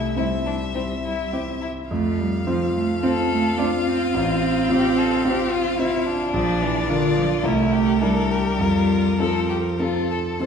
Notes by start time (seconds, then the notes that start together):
Already playing: C2 A3 E4 E5
0.16 G3 C4 E4 C5 E5
0.46 D4
0.74 C4 E4 C5
1.04 E4
1.33 C4 E4 G4 C5
1.62 E4
1.90 F2 A3 F5
2.19 G3
2.46 F3 C4 F4 C5
2.74 A3
3.03 C4 F4 A4 C5
3.31 A3
3.58 C4 D4 F4 C5
3.85 C4
4.14 A1 C4
4.69 C4 F4 G4 C5
4.98 A4
5.25 C4 F4 G4 C5
5.51 F4
5.79 C4 E4 F4 C5
6.07 D4
6.33 A#1 F3 D5
6.62 E3
6.88 D3 D4 F4 A#4
7.16 F3
7.43 C2 A3 E4 A#4
7.72 G4
8.01 G3 D4 E4 A4 A#4
8.30 G4
8.59 F2 G3 F4
9.19 F3 C4 F4 A4
9.49 G4
9.79 C4 F4 A4
10.10 A4
10.40 C4 F4 A4 C5